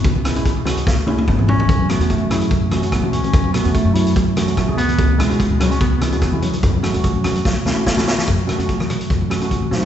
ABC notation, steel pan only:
X:1
M:4/4
L:1/16
Q:"Swing 16ths" 1/4=146
K:F#m
V:1 name="Steel pan"
z2 [G,CE] [G,CE]2 z [G,CF]2 z2 [G,CE] [G,CE] z [G,CE]3 | z2 [A,CF] [A,CF]2 z [A,CG]2 z2 [A,CF] [A,CF] z [A,CF]3 | z2 [A,CF] [A,CF]2 z [A,CF]2 z2 [A,CF] [A,CF] z [A,CG]3 | z2 [G,CE] [G,CF]2 z [G,CF]2 z2 [G,CE] [G,CF] z [G,CE]3 |
z2 [A,CF] [A,CF]2 z [A,CF]2 z2 [A,CE] [A,CF] z [A,CF]3 | z2 [A,CF] [A,CF]4 z3 [A,CF] [A,CF]2 z [A,CF]2 |]